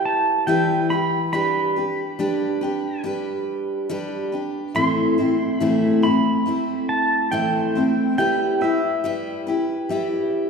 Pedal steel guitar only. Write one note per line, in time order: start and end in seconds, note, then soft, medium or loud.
0.05 0.47 A5 medium
0.47 0.92 G5 medium
0.90 1.32 B5 medium
1.33 3.00 B5 medium
4.76 5.58 C6 loud
5.58 6.00 B5 loud
6.03 6.89 B5 medium
6.89 7.34 A5 medium
7.32 8.17 G5 medium
8.18 8.63 G5 medium
8.62 9.43 E5 medium